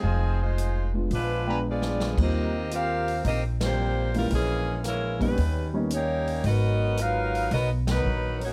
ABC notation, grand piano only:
X:1
M:4/4
L:1/8
Q:"Swing" 1/4=112
K:Fmix
V:1 name="Grand piano"
z3 [_A,_CDF] z [A,CDg]3 | [K:Ablyd] [E,G,B,CF] z6 [_F,A,B,_D_F] | z3 [G,B,_C_DE] z [G,B,CDE] z2 | z8 |]